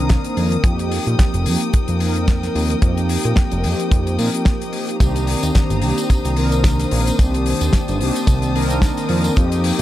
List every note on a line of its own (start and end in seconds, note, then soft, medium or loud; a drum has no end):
0.00 0.17 C2 medium
0.00 0.61 D#3 loud
0.00 0.61 A#3 medium
0.00 0.61 C4 medium
0.00 0.61 D4 medium
0.00 0.62 A#4 loud
0.00 0.60 C5 medium
0.00 0.60 A#5 medium
0.00 4.97 D#6 medium
0.09 kick loud
0.09 snare loud
0.09 closed hi-hat medium
0.24 closed hi-hat soft
0.37 0.57 F2 loud
0.37 open hi-hat medium
0.52 closed hi-hat medium
0.63 0.99 F2 medium
0.63 1.42 F3 medium
0.63 1.43 A#3 medium
0.63 1.43 C4 medium
0.63 1.43 D#4 medium
0.63 1.44 G4 loud
0.63 4.97 A#4 medium
0.63 4.97 G5 medium
0.63 kick loud
0.63 closed hi-hat medium
0.79 closed hi-hat medium
0.92 open hi-hat loud
1.07 1.15 A#2 medium
1.07 closed hi-hat medium
1.19 kick loud
1.19 snare loud
1.19 closed hi-hat medium
1.34 1.48 F1 loud
1.34 closed hi-hat medium
1.46 1.57 F2 medium
1.46 1.97 F3 medium
1.46 1.98 A#3 medium
1.46 1.98 C4 medium
1.46 1.98 D#4 medium
1.46 1.98 G4 medium
1.46 open hi-hat loud
1.60 closed hi-hat medium
1.73 1.86 F2 soft
1.73 kick loud
1.73 closed hi-hat medium
1.88 2.49 F2 medium
1.88 closed hi-hat medium
1.99 2.79 F3 loud
1.99 2.79 A#3 medium
1.99 2.79 C4 medium
1.99 2.80 D#4 medium
1.99 2.80 A#4 loud
1.99 open hi-hat loud
2.15 closed hi-hat medium
2.28 kick loud
2.28 snare loud
2.28 closed hi-hat medium
2.43 snare soft
2.43 closed hi-hat medium
2.55 2.75 D#2 loud
2.55 open hi-hat loud
2.70 closed hi-hat medium
2.81 3.17 F2 loud
2.81 3.60 F3 medium
2.81 3.61 A#3 medium
2.81 3.61 C4 medium
2.81 3.61 D#4 medium
2.81 3.62 G4 loud
2.81 kick loud
2.81 closed hi-hat medium
2.97 closed hi-hat medium
3.09 open hi-hat loud
3.24 3.33 A#2 medium
3.24 closed hi-hat soft
3.36 kick loud
3.36 snare loud
3.36 closed hi-hat medium
3.51 3.66 F1 loud
3.51 closed hi-hat medium
3.63 3.75 F2 medium
3.63 4.15 F3 medium
3.63 4.15 A#3 medium
3.63 4.15 C4 medium
3.63 4.16 D#4 medium
3.63 4.16 G4 medium
3.63 open hi-hat loud
3.80 closed hi-hat soft
3.92 4.18 F2 loud
3.92 kick loud
3.92 closed hi-hat medium
4.07 closed hi-hat medium
4.18 4.29 A#2 medium
4.18 4.30 F3 medium
4.18 4.30 A#3 medium
4.18 4.30 C4 medium
4.18 4.30 D#4 medium
4.18 4.30 A#4 loud
4.18 open hi-hat loud
4.32 4.97 F3 medium
4.32 4.97 A#3 medium
4.32 4.97 C4 medium
4.32 4.97 D#4 medium
4.32 4.98 G4 medium
4.32 closed hi-hat soft
4.45 kick loud
4.45 snare loud
4.45 closed hi-hat medium
4.61 closed hi-hat medium
4.73 open hi-hat loud
4.89 closed hi-hat soft
4.99 5.36 C2 loud
4.99 5.79 D#3 medium
4.99 5.79 A#3 medium
4.99 5.79 C4 medium
4.99 5.80 D4 medium
4.99 5.80 G4 loud
4.99 9.33 C5 medium
4.99 7.17 A#5 medium
4.99 9.82 D#6 medium
4.99 kick loud
4.99 closed hi-hat medium
4.99 tambourine medium
5.16 closed hi-hat soft
5.16 tambourine soft
5.27 open hi-hat loud
5.43 5.51 D#2 medium
5.43 closed hi-hat medium
5.43 tambourine medium
5.55 kick loud
5.55 snare loud
5.55 closed hi-hat medium
5.55 tambourine medium
5.70 5.84 G1 loud
5.70 closed hi-hat medium
5.70 tambourine soft
5.81 5.93 C2 medium
5.81 6.33 D#3 medium
5.81 6.34 A#3 medium
5.81 6.34 C4 medium
5.81 6.34 D4 medium
5.81 6.34 G4 loud
5.81 open hi-hat loud
5.98 closed hi-hat soft
5.98 tambourine medium
6.10 6.22 C2 soft
6.10 kick loud
6.10 closed hi-hat medium
6.10 tambourine medium
6.25 6.86 C2 medium
6.25 closed hi-hat medium
6.25 tambourine soft
6.35 7.15 D#3 loud
6.35 7.15 A#3 medium
6.35 7.16 C4 medium
6.35 7.16 D4 medium
6.35 7.16 A#4 loud
6.35 open hi-hat medium
6.52 closed hi-hat soft
6.52 tambourine medium
6.64 kick loud
6.64 snare loud
6.64 closed hi-hat medium
6.64 tambourine medium
6.79 snare soft
6.79 closed hi-hat medium
6.79 tambourine soft
6.91 7.12 A#1 loud
6.91 open hi-hat loud
7.07 closed hi-hat soft
7.07 tambourine medium
7.18 7.54 C2 loud
7.18 7.97 D#3 medium
7.18 7.97 A#3 medium
7.18 7.98 C4 medium
7.18 7.98 D4 medium
7.18 7.98 G4 loud
7.18 9.34 A5 medium
7.18 kick loud
7.18 closed hi-hat medium
7.18 tambourine medium
7.34 closed hi-hat medium
7.34 tambourine soft
7.46 open hi-hat loud
7.61 7.70 D#2 medium
7.61 closed hi-hat medium
7.61 tambourine medium
7.73 kick loud
7.73 snare loud
7.73 closed hi-hat medium
7.73 tambourine medium
7.88 8.02 G1 loud
7.88 closed hi-hat soft
7.88 tambourine soft
8.00 8.11 C2 loud
8.00 8.52 D#3 medium
8.00 8.52 A#3 medium
8.00 8.52 C4 medium
8.00 8.52 D4 medium
8.00 8.53 G4 loud
8.00 open hi-hat loud
8.15 closed hi-hat medium
8.15 tambourine medium
8.27 8.90 C2 loud
8.27 kick loud
8.27 closed hi-hat medium
8.27 tambourine medium
8.42 closed hi-hat medium
8.42 tambourine soft
8.54 9.33 D#3 loud
8.54 9.34 A#3 medium
8.54 9.34 C4 medium
8.54 9.34 D4 medium
8.54 9.34 A#4 loud
8.54 open hi-hat loud
8.70 closed hi-hat medium
8.70 tambourine medium
8.82 kick loud
8.82 snare loud
8.82 closed hi-hat medium
8.82 tambourine medium
8.97 closed hi-hat medium
8.97 tambourine soft
9.09 9.30 F2 loud
9.09 open hi-hat loud
9.24 closed hi-hat medium
9.24 tambourine medium
9.36 9.72 F2 loud
9.36 9.82 F3 medium
9.36 9.82 A#3 medium
9.36 9.82 C4 medium
9.36 9.82 D#4 medium
9.36 9.82 G4 loud
9.36 9.82 A#4 medium
9.36 9.82 G5 medium
9.36 kick loud
9.36 closed hi-hat medium
9.36 tambourine medium
9.52 closed hi-hat medium
9.52 tambourine soft
9.64 open hi-hat loud